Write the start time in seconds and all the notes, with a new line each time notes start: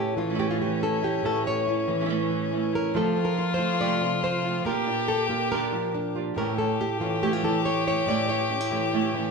Already playing: A2 A3 C#4 E4 G4 A4
0.17 E3 F4, muted nylon-string guitar stroke
0.29 E3 A3 C#4 E4
0.34 E3 A3 C#4 E4
0.38 A2 E3 A3 C#4 E4 G4
0.51 F4
0.59 E3 G4
0.80 E3 A3 C#4 E4 A4
1.02 A3 C#4 E4 G4
1.23 A2 E3 A3 C#4 E4 A4
1.47 C#5
1.66 A3 C#4 E4
1.88 E3, muted nylon-string guitar stroke
2.00 E3 A3 C#4 E4
2.05 E3 A3 C#4 E4
2.09 A2 E3 A3 C#4 E4
2.30 E3
2.51 E3 A3 C#4 E4
2.73 A3 C#4 E4 A#4
2.94 F2 C3 F3 A3 C4 F4 A4
3.16 F3 A3 C4 F4
3.25 A#4
3.37 F4, muted nylon-string guitar stroke
3.54 C5
3.58 F3 A3 C4 F4
3.80 F2 C3 F3 A3 C4 F4 D5
4.01 C3 F3 A3 C4 F4
4.23 C5, muted nylon-string guitar stroke
4.44 F3 A3 C4 F4
4.65 A#2 D3 G3 D4 F4 G4 A#4
4.87 G3 D4 F4
5.08 A4, muted nylon-string guitar stroke
5.29 G3 A#3 D4 F4 G4
5.51 A#2 D3 G3 D4 F4 A#4
5.72 F3 G3 D4 F4
5.94 D4, muted nylon-string guitar stroke
6.15 G3 D4 F4 G4
6.35 A2 E3 A3 C#4 E4 G4 A#4
6.58 A3 C#4 E4 A4
6.80 G4, muted nylon-string guitar stroke
7.00 E3 A3 C#4 E4 F4
7.22 A2 E3 A3 C#4 E4 G4
7.33 F4
7.43 E3 A3 C#4 E4 A4
7.65 C#5, muted nylon-string guitar stroke
7.87 A3 C#4 E4 C#5
8.06 A2 E3 A3 C#4 E4 D5
8.29 A3 C#4 E4 C#5
8.50 C#4, muted nylon-string guitar stroke
8.61 E4
8.71 E3 A3 C#4 E4
8.93 A2 E3 A3 C#4 E4
9.14 E3 A3 C#4 E4